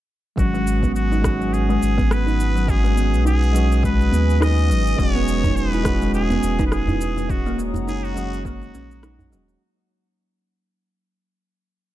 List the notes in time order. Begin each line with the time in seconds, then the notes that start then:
0.36 G#1 F#3 G#3 C#4 F#4 B4 F#5 G#5 D#6, kick, cabasa
0.40 F#4
0.54 G#3, cabasa
0.67 cabasa
0.83 B3, kick, cabasa
0.95 F#4, cabasa
1.12 D#4, cabasa
1.22 G#3 C#4, kick, cross-stick, cabasa
1.26 F#4
1.40 F#3, cabasa
1.53 G#4, cabasa
1.69 G#3, cabasa
1.82 G#1, cabasa
1.98 B3, kick, cabasa
2.11 B4, cross-stick, cabasa
2.26 D#4, cabasa
2.40 cabasa
2.55 F#3, cabasa
2.67 G#3 C#4 G#4, kick, cabasa
2.71 F#4
2.84 G#3, cabasa
2.96 B3, cabasa
3.13 B1, cabasa
3.25 D#4 G#4, cabasa
3.43 cabasa
3.53 F#3 G#3 C#4, cabasa
3.57 F#4
3.72 cabasa
3.83 G#3 B4, kick, cabasa
4.01 cabasa
4.12 D#2 B3, cabasa
4.30 cabasa
4.41 D#4 D#5, cross-stick, cabasa
4.58 cabasa
4.70 G#1 F#3, cabasa
4.87 cabasa
4.96 E1 G#3 C#4 C#5, kick, cabasa
5.00 F#4
5.15 B3, cabasa
5.28 cabasa
5.43 D#4, kick, djembe slap, djembe tone, djembe bass, cabasa
5.56 B4, cabasa
5.73 E4, cabasa
5.83 G#3 C#4, kick, cross-stick, djembe tone, cabasa
5.87 F#4
6.02 G#3, cabasa
6.14 G#4, cabasa
6.30 B3, djembe slap, djembe tone, cabasa
6.43 E1, djembe slap, cabasa
6.59 D#4, kick, djembe slap, cabasa
6.66 B4
6.72 G#4, cross-stick, cabasa
6.88 E4, djembe bass, cabasa
7.00 djembe slap, cabasa
7.16 G#3, djembe tone, cabasa
7.28 D#1 G#3 C#4 F#4 C#5 F#5 A#5 D#6, kick, cabasa
7.32 F#4
7.46 A#3, cabasa
7.58 C#4, cabasa
7.74 F#1, djembe slap, djembe tone, djembe bass, cabasa
7.88 D#4 G#4, cabasa
8.04 F#4, cabasa
8.14 F#3 G#3 C#4, djembe tone, cabasa
8.18 F#4
8.33 cabasa
8.45 A#3 F#4, kick, cabasa
8.62 djembe slap, cabasa
8.74 A#1 C#4, djembe slap, cabasa
8.91 cabasa
9.03 D#4, cross-stick, cabasa
9.19 djembe slap, djembe bass, cabasa
9.31 D#1 F#3 G#3 C#4 F#4, djembe tone, cabasa
9.48 djembe slap, cabasa